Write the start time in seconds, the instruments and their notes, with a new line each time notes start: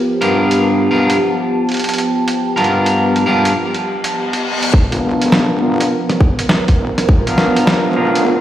Already playing: ambient pad F3 B3 G4
0.03 ambient pad A5
0.21 clean electric guitar G2 B3 D4 F4 A#4, closed hi-hat
0.51 closed hi-hat
0.91 clean electric guitar G2 B3 D4 F4 A#4
1.10 closed hi-hat
1.69 closed hi-hat
1.72 closed hi-hat
1.74 closed hi-hat
1.77 closed hi-hat
1.79 closed hi-hat
1.84 closed hi-hat
1.89 closed hi-hat
1.94 closed hi-hat
1.98 closed hi-hat
2.28 closed hi-hat
2.56 clean electric guitar G2 B3 D4 F4 A#4, closed hi-hat
2.64 closed hi-hat
2.86 closed hi-hat
3.16 closed hi-hat
3.26 clean electric guitar G2 B3 D4 F4 A#4
3.45 closed hi-hat
3.56 reverse cymbal
3.74 closed hi-hat
4.04 closed hi-hat
4.33 closed hi-hat
4.63 closed hi-hat
4.73 wobble bass G1, ambient pad F3 B3 A#4, kick, riser
4.91 clean electric guitar B3 D4 F4 A#4, closed hi-hat
5.21 wobble bass G1, closed hi-hat
5.32 snare
5.61 wobble bass G1, clean electric guitar B3 D4 F4 A#4
5.80 closed hi-hat
6.09 snare, closed hi-hat
6.21 kick
6.39 closed hi-hat
6.49 snare
6.68 kick, closed hi-hat
6.79 wobble bass F1
6.98 snare, closed hi-hat
7.09 kick
7.27 clean electric guitar B3 D4 F4 A#4, closed hi-hat
7.38 snare
7.56 wobble bass G2, closed hi-hat
7.67 snare
7.86 wobble bass G1
7.96 wobble bass B1, clean electric guitar B3 D4 F4 A#4
8.15 closed hi-hat